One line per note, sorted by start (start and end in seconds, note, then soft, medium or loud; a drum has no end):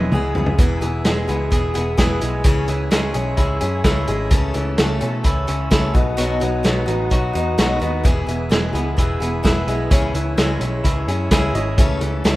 0.00 0.11 E1 medium
0.00 0.59 E3 medium
0.00 0.59 G#3 medium
0.00 0.12 B3 soft
0.00 0.35 B3 medium
0.00 0.13 E4 medium
0.00 0.12 G#4 medium
0.00 0.30 G#4 medium
0.00 0.30 B4 medium
0.00 0.57 B4 medium
0.00 0.31 C#5 medium
0.00 0.57 G#5 medium
0.00 0.57 E6 medium
0.00 high tom medium
0.12 0.34 C#2 medium
0.12 0.35 E3 medium
0.12 0.36 B3 medium
0.12 0.35 E4 medium
0.12 0.34 G#4 medium
0.12 mid tom medium
0.35 0.58 C#2 medium
0.35 0.58 B3 soft
0.35 0.59 E4 medium
0.35 0.58 G#4 medium
0.35 floor tom medium
0.46 floor tom medium
0.58 0.79 E1 medium
0.58 1.75 E2 medium
0.58 0.82 E3 medium
0.58 0.82 B3 medium
0.58 0.82 E4 medium
0.58 0.80 G#4 medium
0.58 2.43 B4 medium
0.58 4.28 G#5 medium
0.58 5.91 E6 medium
0.58 kick loud
0.58 closed hi-hat medium
0.81 1.02 E1 medium
0.81 2.67 E3 medium
0.81 1.04 B3 soft
0.81 1.05 E4 medium
0.81 1.05 G#4 medium
0.81 closed hi-hat medium
1.04 1.26 E1 medium
1.04 1.28 E3 medium
1.04 2.20 G#3 medium
1.04 1.29 B3 medium
1.04 1.28 E4 medium
1.04 1.26 G#4 medium
1.04 snare loud
1.04 closed hi-hat medium
1.28 1.49 C#2 medium
1.28 1.51 B3 soft
1.28 1.52 E4 medium
1.28 1.51 G#4 medium
1.28 closed hi-hat medium
1.50 1.72 E1 medium
1.50 1.74 E3 soft
1.50 1.75 B3 medium
1.50 1.74 E4 medium
1.50 1.73 G#4 medium
1.50 kick medium
1.50 closed hi-hat medium
1.74 1.96 E1 medium
1.74 1.97 B3 soft
1.74 1.98 E4 medium
1.74 1.98 G#4 medium
1.74 closed hi-hat medium
1.97 2.19 E1 medium
1.97 2.21 E3 medium
1.97 2.22 B3 medium
1.97 2.21 E4 medium
1.97 2.20 G#4 loud
1.97 kick medium
1.97 snare loud
1.97 closed hi-hat medium
2.21 2.42 B1 medium
2.21 2.45 G#3 medium
2.21 2.45 B3 soft
2.21 2.44 E4 medium
2.21 2.45 G#4 medium
2.21 closed hi-hat medium
2.43 2.65 C#2 medium
2.43 2.68 C#3 medium
2.43 2.68 E3 medium
2.43 2.69 C#4 medium
2.43 2.68 E4 medium
2.43 2.67 G#4 loud
2.43 5.91 C#5 medium
2.43 kick loud
2.43 closed hi-hat medium
2.68 2.89 C#2 medium
2.68 3.85 E3 medium
2.68 2.90 C#4 soft
2.68 2.91 E4 medium
2.68 2.92 G#4 medium
2.68 closed hi-hat medium
2.91 3.12 C#2 medium
2.91 3.15 C#3 medium
2.91 3.15 E3 medium
2.91 4.06 G#3 medium
2.91 3.15 C#4 medium
2.91 3.14 E4 medium
2.91 3.13 G#4 medium
2.91 snare loud
2.91 closed hi-hat medium
3.14 3.35 B1 medium
3.14 3.37 C#4 soft
3.14 3.38 E4 soft
3.14 3.38 G#4 medium
3.14 closed hi-hat medium
3.37 3.58 C#2 medium
3.37 3.61 E3 medium
3.37 3.62 C#4 medium
3.37 3.61 E4 medium
3.37 3.59 G#4 medium
3.37 kick medium
3.37 closed hi-hat medium
3.61 3.82 F#2 medium
3.61 3.84 C#4 soft
3.61 3.85 E4 medium
3.61 3.85 G#4 medium
3.61 closed hi-hat medium
3.84 4.05 C#2 medium
3.84 4.08 C#3 medium
3.84 4.08 E3 medium
3.84 4.09 C#4 medium
3.84 4.08 E4 medium
3.84 4.07 G#4 loud
3.84 kick medium
3.84 snare loud
3.84 closed hi-hat medium
4.08 4.28 G#1 medium
4.08 4.31 G#3 medium
4.08 4.31 C#4 soft
4.08 4.32 E4 medium
4.08 4.32 G#4 medium
4.08 closed hi-hat medium
4.30 4.52 C#2 medium
4.30 4.54 C#3 medium
4.30 4.55 E3 medium
4.30 4.55 A3 medium
4.30 4.54 C#4 medium
4.30 4.53 A4 medium
4.30 5.94 A5 medium
4.30 kick loud
4.30 closed hi-hat medium
4.54 4.76 C#2 medium
4.54 5.71 E3 medium
4.54 4.78 A3 medium
4.54 4.79 C#4 medium
4.54 4.78 A4 medium
4.54 closed hi-hat medium
4.78 4.99 C#2 medium
4.78 5.01 C#3 medium
4.78 5.02 E3 medium
4.78 5.02 A3 medium
4.78 5.01 C#4 medium
4.78 4.99 A4 medium
4.78 snare loud
4.78 closed hi-hat medium
5.01 5.22 B2 medium
5.01 5.24 A3 soft
5.01 5.25 C#4 medium
5.01 5.25 A4 medium
5.01 closed hi-hat medium
5.24 5.45 C#2 medium
5.24 5.48 E3 medium
5.24 5.48 A3 medium
5.24 5.48 C#4 medium
5.24 5.70 E4 medium
5.24 5.46 A4 medium
5.24 kick medium
5.24 closed hi-hat medium
5.47 5.69 C#2 medium
5.47 5.70 A3 soft
5.47 5.71 C#4 medium
5.47 5.71 A4 medium
5.47 closed hi-hat medium
5.71 5.92 C#2 medium
5.71 5.95 C#3 medium
5.71 5.95 E3 medium
5.71 5.95 A3 loud
5.71 5.95 C#4 medium
5.71 5.95 E4 medium
5.71 5.93 A4 loud
5.71 kick medium
5.71 snare loud
5.71 closed hi-hat medium
5.94 6.15 B1 medium
5.94 6.16 B2 medium
5.94 6.17 B3 medium
5.94 6.17 D#4 medium
5.94 6.18 F#4 medium
5.94 8.03 B4 medium
5.94 8.03 F#5 medium
5.94 8.03 D#6 medium
5.94 kick loud
5.94 closed hi-hat medium
6.17 6.39 B1 medium
6.17 6.41 B2 loud
6.17 6.41 F#3 medium
6.17 6.42 B3 loud
6.17 6.41 D#4 medium
6.17 6.39 F#4 loud
6.17 closed hi-hat loud
6.40 6.62 B1 medium
6.40 7.58 F#3 medium
6.40 6.63 B3 soft
6.40 6.63 D#4 soft
6.40 6.64 F#4 medium
6.40 closed hi-hat medium
6.63 6.85 B1 medium
6.63 6.87 B2 medium
6.63 6.88 F#3 medium
6.63 6.88 B3 medium
6.63 6.86 D#4 medium
6.63 6.85 F#4 medium
6.63 snare medium
6.63 closed hi-hat medium
6.86 7.08 A1 medium
6.86 7.10 B3 soft
6.86 7.11 D#4 soft
6.86 7.11 F#4 medium
6.86 closed hi-hat medium
7.10 7.32 B1 medium
7.10 7.34 F#3 medium
7.10 7.35 B3 medium
7.10 7.34 D#4 medium
7.10 7.32 F#4 medium
7.10 kick medium
7.10 closed hi-hat medium
7.33 7.55 E2 medium
7.33 7.57 B3 soft
7.33 7.58 D#4 soft
7.33 7.58 F#4 medium
7.33 closed hi-hat medium
7.58 7.79 B1 medium
7.58 7.81 B2 medium
7.58 7.82 F#3 medium
7.58 7.81 B3 medium
7.58 7.80 D#4 loud
7.58 7.78 F#4 medium
7.58 snare loud
7.58 closed hi-hat medium
7.80 8.02 D#2 medium
7.80 8.03 B3 soft
7.80 8.05 D#4 soft
7.80 8.04 F#4 medium
7.80 closed hi-hat medium
8.03 8.25 E1 medium
8.03 9.22 E2 medium
8.03 8.28 E3 medium
8.03 8.28 B3 medium
8.03 8.27 E4 medium
8.03 8.60 G#4 medium
8.03 8.25 G#4 medium
8.03 8.60 B4 medium
8.03 9.90 B4 medium
8.03 8.61 E5 medium
8.03 11.74 G#5 medium
8.03 12.36 E6 medium
8.03 kick loud
8.03 closed hi-hat medium
8.27 8.48 E1 medium
8.27 10.14 E3 medium
8.27 8.49 B3 soft
8.27 8.50 E4 medium
8.27 8.51 G#4 medium
8.27 closed hi-hat medium
8.49 8.71 E1 medium
8.49 8.74 E3 medium
8.49 9.66 G#3 medium
8.49 8.74 B3 medium
8.49 8.73 E4 medium
8.49 8.72 G#4 medium
8.49 snare loud
8.49 closed hi-hat medium
8.73 8.94 C#2 medium
8.73 8.96 B3 soft
8.73 8.97 E4 soft
8.73 8.97 G#4 medium
8.73 closed hi-hat medium
8.97 9.18 E1 medium
8.97 9.21 E3 medium
8.97 9.21 B3 medium
8.97 9.20 E4 medium
8.97 9.19 G#4 medium
8.97 kick medium
8.97 closed hi-hat medium
9.20 9.41 E1 medium
9.20 9.42 B3 soft
9.20 9.43 E4 medium
9.20 9.44 G#4 medium
9.20 closed hi-hat medium
9.43 9.65 E1 medium
9.43 9.67 E3 medium
9.43 9.68 B3 medium
9.43 9.68 E4 loud
9.43 9.59 G#4 medium
9.43 9.67 G#4 medium
9.43 9.59 B4 medium
9.43 9.59 E5 medium
9.43 kick medium
9.43 snare loud
9.43 closed hi-hat medium
9.67 9.88 B1 medium
9.67 9.91 G#3 medium
9.67 9.91 E4 medium
9.67 9.82 G#4 medium
9.67 9.91 G#4 medium
9.67 9.82 B4 medium
9.67 9.82 E5 medium
9.67 closed hi-hat medium
9.71 9.92 B3 soft
9.90 10.12 C#2 medium
9.90 10.14 C#3 medium
9.90 10.15 E3 medium
9.90 10.15 C#4 medium
9.90 10.15 E4 medium
9.90 10.47 G#4 medium
9.90 10.13 G#4 medium
9.90 10.47 C#5 medium
9.90 12.36 C#5 medium
9.90 10.47 E5 medium
9.90 kick loud
9.90 closed hi-hat medium
10.14 10.35 C#2 medium
10.14 11.31 E3 medium
10.14 10.38 C#4 soft
10.14 10.38 E4 medium
10.14 10.38 G#4 medium
10.14 closed hi-hat medium
10.37 10.58 C#2 medium
10.37 10.61 C#3 medium
10.37 10.62 E3 medium
10.37 11.53 G#3 medium
10.37 10.62 C#4 medium
10.37 10.61 E4 medium
10.37 10.60 G#4 medium
10.37 snare loud
10.37 closed hi-hat medium
10.60 10.81 B1 medium
10.60 10.84 C#4 soft
10.60 10.85 E4 soft
10.60 10.84 G#4 medium
10.60 closed hi-hat medium
10.84 11.05 C#2 medium
10.84 11.08 E3 medium
10.84 11.08 C#4 medium
10.84 11.08 E4 medium
10.84 11.07 G#4 medium
10.84 kick medium
10.84 closed hi-hat medium
11.08 11.28 F#2 medium
11.08 11.31 C#4 soft
11.08 11.31 E4 medium
11.08 11.31 G#4 medium
11.08 closed hi-hat medium
11.31 11.51 C#2 medium
11.31 11.54 C#3 medium
11.31 11.55 E3 loud
11.31 11.55 C#4 loud
11.31 11.55 E4 medium
11.31 11.45 G#4 medium
11.31 11.54 G#4 loud
11.31 11.45 C#5 medium
11.31 11.46 E5 medium
11.31 kick medium
11.31 snare loud
11.31 closed hi-hat medium
11.54 11.79 G#1 medium
11.54 11.78 G#3 medium
11.54 11.79 C#4 soft
11.54 11.79 E4 medium
11.54 11.68 G#4 medium
11.54 11.78 G#4 medium
11.54 11.68 C#5 medium
11.54 11.69 D#5 medium
11.54 closed hi-hat medium
11.77 11.98 C#2 medium
11.77 12.01 C#3 medium
11.77 12.02 E3 loud
11.77 12.02 A3 medium
11.77 12.01 C#4 loud
11.77 12.33 A4 medium
11.77 12.00 A4 loud
11.77 12.34 C#5 medium
11.77 12.34 E5 medium
11.77 12.36 A5 medium
11.77 kick loud
11.77 closed hi-hat medium
12.01 12.21 C#2 medium
12.01 12.36 E3 medium
12.01 12.24 A3 medium
12.01 12.24 C#4 medium
12.01 12.24 A4 medium
12.01 closed hi-hat medium
12.24 12.36 C#2 medium
12.24 12.36 C#3 medium
12.24 12.36 E3 medium
12.24 12.36 A3 medium
12.24 12.36 C#4 medium
12.24 12.36 A4 medium
12.24 snare loud
12.24 closed hi-hat medium